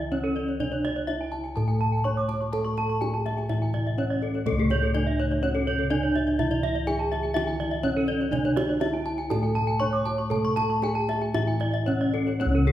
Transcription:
Already playing: D3 E3 E4
0.00 E5
0.12 C#4 D4 C#5, kendang slap, kendang low
0.24 A4
0.36 D5, kendang slap
0.48 C#5, kendang slap
0.60 D3 D4 D5, kendang low
0.72 C#5, kendang slap
0.85 D5, kendang high
0.96 C#5
1.07 D4 E4 E5, kendang slap, kendang high
1.21 G#5
1.32 A5, kendang slap
1.44 G#5, kendang slap
1.56 A2 A3 A4 A5, kendang high
1.68 G#5, kendang slap
1.81 A5, kendang slap, kendang low
1.92 G#5
2.04 D4 C#5 C#6, kendang slap, kendang low
2.17 D6
2.28 A5, kendang slap, kendang high
2.41 C#6, kendang slap
2.53 A3 A4 A5, kendang low
2.65 C#6, kendang slap
2.77 A5, kendang high
2.90 C#6
3.01 D4 G#4 G#5, kendang slap, kendang high
3.14 A5
3.26 E5, kendang slap, kendang high
3.37 G#5, kendang slap
3.49 A2 E3 E4 E5, kendang high
3.62 G#5, kendang slap
3.74 D5, kendang slap, kendang low
3.86 E5, kendang slap
3.98 C#4 D4 C#5, kendang slap, kendang low
4.10 D5
4.22 A4, kendang slap
4.34 C#5, kendang slap
4.46 A3 A4, kendang low
4.52 C#2
4.59 G#4, kendang slap
4.70 C#5, kendang high
4.83 A4
4.94 D4 D5, kendang slap, kendang high
5.07 E5
5.19 C#5, kendang slap
5.31 D5, kendang slap
5.43 C#3 C#4 C#5, kendang high
5.55 A4, kendang slap
5.67 C#5, kendang slap, kendang low
5.79 A4
5.90 D4 D5, kendang slap, kendang low
6.03 C#5
6.15 E5, kendang slap, kendang high
6.27 D5, kendang slap
6.39 E3 E4 E5, kendang low
6.51 D5, kendang slap
6.63 E5, kendang high
6.75 D5
6.87 D4 G#4 G#5, kendang slap, kendang high
6.99 A5
7.12 E5, kendang slap, kendang high
7.23 G#5, kendang slap
7.34 D3 E3 E4 E5, kendang high
7.47 G#5, kendang slap
7.60 D5, kendang slap, kendang low
7.71 E5
7.83 C#4 D4 C#5, kendang slap, kendang low
7.97 A4
8.08 D5, kendang slap
8.20 C#5, kendang slap
8.31 D3 D4 D5, kendang low
8.45 C#5, kendang slap
8.57 D5, kendang high
8.69 C#5
8.80 E4 E5, kendang slap, kendang high
8.94 G#5
9.06 A5, kendang slap
9.18 G#5, kendang slap
9.30 A2 A3 A4 A5, kendang high
9.43 G#5, kendang slap
9.55 A5, kendang slap, kendang low
9.67 G#5
9.80 D4 C#5 C#6, kendang slap, kendang low
9.93 D6
10.06 A5, kendang slap, kendang high
10.18 C#6, kendang slap
10.30 A3 A4 A5, kendang low
10.44 C#6, kendang slap
10.56 A5, kendang high
10.70 C#6
10.82 D4 G#4 G#5, kendang slap, kendang high
10.95 A5
11.09 E5, kendang slap, kendang high
11.21 G#5, kendang slap
11.34 A2 E3 E4 E5, kendang high
11.47 G#5, kendang slap
11.60 D5, kendang slap, kendang low
11.74 E5, kendang slap
11.86 C#4 D4 C#5, kendang slap, kendang low
12.01 D5
12.14 A4, kendang slap
12.27 C#5, kendang slap
12.40 C#4 C#5, kendang high
12.46 C#2
12.55 A4
12.67 G#4, kendang slap, kendang high

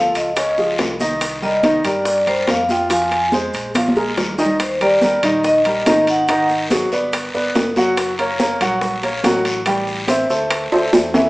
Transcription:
Already playing: F3 F4 A4 F5
0.15 C#2 D#5, high conga, high timbale, short guiro, maracas
0.36 C#3 C#4 C#5, high bongo, high conga, high timbale, long guiro, maracas
0.57 F3 F4 G#4, high bongo, high conga, maracas
0.79 C2, high bongo, low bongo, high conga, high timbale, low timbale, short guiro, maracas
1.00 D#3 D#4 D#5, high bongo, high conga, short guiro, maracas
1.21 high bongo, high conga, high timbale, long guiro, maracas
1.42 G3 G4 A#4 D#5, high conga, maracas
1.63 D#3 D#4 D#5, high bongo, high conga, high timbale, short guiro, maracas
1.84 G2 G3 G4 A#4 D5, high conga, high timbale, short guiro, maracas
2.05 high bongo, high conga, long guiro, maracas
2.26 G3 G4 A#4 C5, high conga, high timbale, maracas
2.47 F2 F5, high bongo, low bongo, high conga, high timbale, low timbale, short guiro, maracas
2.69 F3 F4 F5 G5, high conga, short guiro, maracas
2.90 F3 F4 F5 G#5, high bongo, high conga, high timbale, long guiro, maracas
3.11 high bongo, high conga, high timbale, maracas
3.32 G#3 G#4 C5, high bongo, high conga, short guiro, maracas
3.53 A#1, high conga, high timbale, short guiro, maracas
3.75 F3 F4 F5, high bongo, high conga, high timbale, long guiro, maracas
3.88 high conga
3.96 G#3 G#4 A#4, high bongo, maracas
4.17 D#2, high bongo, low bongo, low conga, high timbale, short guiro, maracas
4.31 low conga
4.38 D#3 D#4 D#5, high bongo, high timbale, short guiro, maracas
4.46 low conga
4.59 C5, high bongo, high conga, high timbale, long guiro, maracas
4.81 G3 G4 A#4 D5, high bongo, high conga, high timbale, maracas
5.01 G3 G4 A#4, high bongo, high conga, low timbale, short guiro, maracas
5.23 A#1 D#3 D#4 D#5, high bongo, high conga, low conga, high timbale, short guiro, maracas
5.44 D#5, high bongo, high conga, long guiro, maracas
5.65 G3 G4 A#4, high bongo, high conga, high timbale, maracas
5.86 G#1 D#3 D#4 D#5, high bongo, low bongo, high conga, high timbale, low timbale, short guiro, maracas
6.07 F#5, high conga, high timbale, short guiro, maracas
6.28 D#3 D#4 D#5, high bongo, high conga, high timbale, long guiro, maracas
6.49 high bongo, high conga, maracas
6.70 F#3 F#4 G#4, high bongo, high conga, high timbale, low timbale, short guiro, maracas
6.91 G1 B3 B4 D5, high bongo, high conga, short guiro, maracas
7.13 high bongo, high conga, high timbale, long guiro, maracas
7.34 G1 B3 B4 D5, high bongo, high conga, maracas
7.55 F#1, high bongo, low bongo, high conga, high timbale, low timbale, short guiro, maracas
7.76 F#3 F#4 F#5, high conga, short guiro, maracas
7.97 high bongo, high conga, high timbale, long guiro, maracas
8.18 A#3 A#4 C#5, high bongo, high conga, high timbale, maracas
8.40 A#3 A#4 C#5, high bongo, high conga, low timbale, short guiro, maracas
8.60 A#1 F#3 F#4 F#5, high bongo, high conga, low conga, high timbale, short guiro, maracas
8.81 high bongo, high conga, low conga, long guiro, maracas
9.03 A#3 A#4 C#5, high bongo, high conga, high timbale, maracas
9.23 A1 F#3 F#4 F#5, high bongo, low bongo, high conga, high timbale, low timbale, short guiro, maracas
9.45 high conga, high timbale, short guiro, maracas
9.66 G3 G4 G5, high bongo, high conga, high timbale, long guiro, maracas
9.87 high bongo, high conga, maracas
10.08 C4 C5 E5, high bongo, high conga, high timbale, low timbale, short guiro, maracas
10.30 D2 A3 A4 C5, high bongo, high conga, short guiro, maracas
10.51 high bongo, high conga, high timbale, long guiro, maracas
10.72 D2 A3 A4 C5, high bongo, high conga, high timbale, maracas
10.93 E2, high bongo, low bongo, high conga, high timbale, short guiro, maracas
11.14 E3 E4 E5, high conga, low timbale, short guiro, maracas

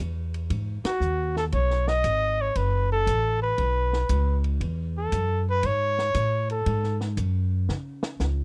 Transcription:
0.00 E2
0.34 ride
0.50 G#2, kick, ride
0.84 F#4, muted upright bass stroke, snare, ride
1.00 D#2, hi-hat pedal
1.36 A4, snare
1.52 B1 C#5, kick, ride
1.70 snare
1.88 D#5, snare
2.04 G#1, kick, hi-hat pedal, ride
2.41 C#5
2.55 F#1 B4, kick, ride
2.92 A4
3.07 A1, kick, hi-hat pedal, ride
3.42 B4
3.58 B1, kick, ride
3.93 snare
4.09 C#2, kick, hi-hat pedal, ride
4.44 ride
4.60 E2, kick, ride
4.97 A4
5.12 F#2, kick, hi-hat pedal, ride
5.50 B4
5.63 G#2 C#5, kick, ride
5.99 snare
6.14 A2, kick, hi-hat pedal, ride
6.50 A4, ride
6.66 G#2, kick, ride
6.84 snare
7.01 snare
7.17 F#2, kick, hi-hat pedal, ride
7.69 C#3, snare
8.03 snare
8.20 C#2, snare, hi-hat pedal

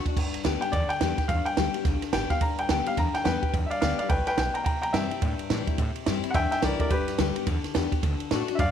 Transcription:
0.06 D4 F#4, muted upright bass stroke, kick, ride
0.16 G1 G2, kick, crash
0.34 B1, ride
0.44 D2 D3 G3 B3 G4, snare, ride
0.61 B3 G4 G5, muted upright bass stroke, ride
0.72 E2 D3 D5, kick, ride
0.89 G5, muted upright bass stroke, ride
1.01 E2 D3 G3 B3 G4, snare, ride
1.18 B3 G4, muted upright bass stroke, kick, snare, ride
1.28 E2 G2 F5, kick, ride
1.45 G5, muted upright bass stroke, ride
1.57 D2 D3 G3 B3 G4, snare, ride
1.74 B3 G4, muted upright bass stroke, ride
1.85 B1 D3, kick, snare, ride
2.02 muted upright bass stroke, snare, ride
2.12 G1 D3 G3 B3 G4 G5, snare, ride
2.30 B3 G4 F5, muted upright bass stroke, kick, snare, ride
2.41 G1 G2 A#5, kick, ride
2.58 B1 G5, ride
2.69 D2 D3 G3 B3 G4 G5, snare, ride
2.86 B3 G4 F5, muted upright bass stroke, ride
2.97 E2 D3 A#5, kick, snare, ride
3.14 G5, muted upright bass stroke, snare, ride
3.24 E2 D3 G3 B3 G4 B4 G5, snare, ride
3.42 B3 G4, muted upright bass stroke, kick, ride
3.53 E2 G2, kick, ride
3.66 D5 E5
3.70 F5, muted upright bass stroke, ride
3.81 D2 D3 G3 B3 G4 D5 F5, snare, ride
3.98 B3 G4 D5 F5, muted upright bass stroke, ride
4.09 B1 A2 B4 G5, kick, ride
4.27 B4 G5, muted upright bass stroke, snare, ride
4.37 B1 B2 B4 G5, snare, ride
4.54 G5 A#5, muted upright bass stroke, ride
4.64 C2 C3 G5 A#5, kick, ride
4.82 E2 G5 A#5, ride
4.93 G2 E3 G3 C4 E4 E5 G5, snare, ride
5.11 C4 E4, muted upright bass stroke, ride
5.22 G2 A2, kick, ride
5.39 muted upright bass stroke, ride
5.50 A2 E3 G3 C4 E4, snare, ride
5.67 C4 E4, muted upright bass stroke, kick, ride
5.78 A2 C3, kick, ride
5.96 muted upright bass stroke, ride
6.06 G2 E3 G3 C4 E4, snare, ride
6.24 C4 E4, muted upright bass stroke, ride
6.30 G2 F#5
6.34 E2 E5 G5, kick, snare, ride
6.51 E5 G5, muted upright bass stroke, snare, ride
6.62 C2 E3 G3 C4 E4 A#4 D5, snare, ride
6.79 C4 E4 A#4 D5, muted upright bass stroke, kick, ride
6.90 G1 G2 G4 B4, kick, ride
7.08 B1, snare, ride
7.18 D2 D3 G3 B3 G4, snare, ride
7.36 B3 G4, muted upright bass stroke, ride
7.47 E2 D3, kick, ride
7.64 muted upright bass stroke, snare, ride
7.74 E2 D3 G3 B3 G4, snare, ride
7.92 B3 G4, muted upright bass stroke, kick, ride
8.03 D2 D3, kick, ride
8.20 muted upright bass stroke, ride
8.31 A2 D3 A3 D4 F#4, snare, ride
8.48 D4 F#4, muted upright bass stroke, ride
8.55 E5, kick, ride
8.59 F#2 A2 D5 F5

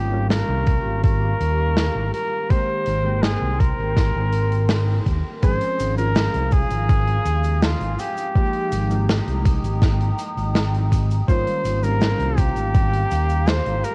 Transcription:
Already playing: G#1 D#3 G3 A#3 C#4 F4 G4 F5 C#6
0.10 D#3 G3 A#3 C#4 F4
0.30 A#4, snare, closed hi-hat
0.48 C2
0.66 kick, closed hi-hat
0.85 G#1
1.03 A#4, kick, closed hi-hat
1.40 D#2, closed hi-hat
1.77 snare, closed hi-hat
1.95 G#1
2.13 A#4, closed hi-hat
2.49 D#3 G#3 A#3 C4 G4 A#4 C5 G5 C6, kick, closed hi-hat
2.86 G#1, closed hi-hat
3.03 D#3 G#3 A#3 C4 G5
3.23 G#4, snare, closed hi-hat
3.42 C2
3.59 A#4, kick, closed hi-hat
3.78 G#1
3.96 kick, snare, closed hi-hat
4.15 G#1
4.32 closed hi-hat
4.52 closed hi-hat
4.69 snare, closed hi-hat
5.06 D#2, kick, closed hi-hat
5.42 G#1 F3 G#3 C4 C#4 G#4 C5 F5, kick, closed hi-hat, cabasa
5.61 closed hi-hat
5.79 G#1, closed hi-hat, cabasa
5.96 F3 G#3 C4 C#4 F4 A#4, closed hi-hat, cabasa
6.16 snare, closed hi-hat, cabasa
6.34 C2, closed hi-hat
6.52 G#4, kick, closed hi-hat, cabasa
6.70 G#1, closed hi-hat, cabasa
6.89 kick, closed hi-hat, cabasa
7.07 closed hi-hat
7.25 D#2, closed hi-hat, cabasa
7.44 closed hi-hat, cabasa
7.62 F4, snare, closed hi-hat, cabasa
7.80 G#1, closed hi-hat
7.99 G4, closed hi-hat, cabasa
8.17 closed hi-hat, cabasa
8.35 F3 G#3 A#3 D#4 G4 G5 A#5 D#6, kick, closed hi-hat, cabasa
8.53 closed hi-hat
8.72 G#1, closed hi-hat, cabasa
8.89 F3 G#3 A#3 D#4 G4, closed hi-hat, cabasa
9.09 snare, closed hi-hat, cabasa
9.27 C2, closed hi-hat
9.45 kick, closed hi-hat, cabasa
9.63 G#1, closed hi-hat, cabasa
9.81 kick, snare, closed hi-hat, cabasa
10.00 closed hi-hat
10.18 closed hi-hat, cabasa
10.37 G#1, closed hi-hat, cabasa
10.55 snare, closed hi-hat, cabasa
10.74 closed hi-hat
10.92 kick, closed hi-hat, cabasa
11.10 closed hi-hat, cabasa
11.28 G#1 D#3 G3 A#3 C#4 F4 G4 C5 F5 A#5, kick, closed hi-hat, cabasa
11.47 closed hi-hat
11.65 G#1, closed hi-hat, cabasa
11.82 D#3 G3 A#3 C#4 F4 A#4, closed hi-hat, cabasa
12.01 snare, closed hi-hat, cabasa
12.19 C2, closed hi-hat
12.38 G4, kick, closed hi-hat, cabasa
12.56 G#1, closed hi-hat, cabasa
12.74 kick, closed hi-hat, cabasa
12.93 closed hi-hat
13.11 D#2, closed hi-hat, cabasa
13.29 closed hi-hat, cabasa
13.46 C5, snare, closed hi-hat, cabasa
13.65 G#1, closed hi-hat
13.84 A#4, closed hi-hat, cabasa

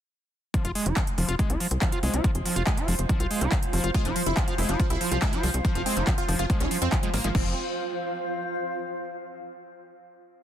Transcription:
0.54 F3 F4, kick, closed hi-hat
0.65 F1 F4, closed hi-hat
0.75 G#3, open hi-hat
0.86 F1 F4 C5, closed hi-hat
0.97 F3, kick, clap, closed hi-hat
1.07 closed hi-hat
1.18 F1 F3, open hi-hat
1.27 F1 F4 F5, closed hi-hat
1.39 G#3, kick, closed hi-hat
1.50 C2 F4, closed hi-hat
1.60 F3, open hi-hat
1.71 C2, closed hi-hat
1.82 F3, kick, clap, closed hi-hat
1.92 F4, closed hi-hat
2.03 C2 G#3, open hi-hat
2.14 C2 F4, closed hi-hat
2.24 F3, kick, closed hi-hat
2.35 F1, closed hi-hat
2.46 F3, open hi-hat
2.56 F1 F4, closed hi-hat
2.67 G#3, kick, clap, closed hi-hat
2.77 F4, closed hi-hat
2.88 F1 F3, open hi-hat
2.99 F1, closed hi-hat
3.09 F3, kick, closed hi-hat
3.20 C2 F4, closed hi-hat
3.31 G#3, open hi-hat
3.41 C2 F4, closed hi-hat
3.52 F3, kick, clap, closed hi-hat
3.63 closed hi-hat
3.73 F1 F3, open hi-hat
3.84 F1 F4, closed hi-hat
3.94 G#3 F4, kick, closed hi-hat
4.05 F1 F3 F4, closed hi-hat
4.16 F3, open hi-hat
4.26 F1 E4, closed hi-hat
4.37 F3, kick, clap, closed hi-hat
4.48 F3 F4, closed hi-hat
4.58 F1 G#3 E4, open hi-hat
4.69 F1 F3 F4, closed hi-hat
4.80 F3, kick, closed hi-hat
4.90 C2 E4, closed hi-hat
5.01 F3, open hi-hat
5.11 C2 F3 F4, closed hi-hat
5.22 G#3 E4, kick, clap, closed hi-hat
5.33 F3 F4, closed hi-hat
5.43 C2 F3, open hi-hat
5.54 C2, closed hi-hat
5.65 F3, kick, closed hi-hat
5.75 F1 F3 F4, closed hi-hat
5.86 G#3 C4, open hi-hat
5.97 F1 F3 F4, closed hi-hat
6.07 F3, kick, clap, closed hi-hat
6.18 F4, closed hi-hat
6.29 F1 F3, open hi-hat
6.39 F1 F4, closed hi-hat
6.50 F3 G#3, kick, closed hi-hat
6.60 C2 C#4 F4, closed hi-hat
6.71 F3, open hi-hat
6.82 F2 C4, closed hi-hat
6.92 F3, kick, clap, closed hi-hat
7.03 F3 G#3, closed hi-hat
7.14 G#1 F3 A#3, open hi-hat
7.24 G#1 F3 G#3, closed hi-hat
7.35 F1 F3 C4 F4, kick, crash
7.41 C5
7.48 F5

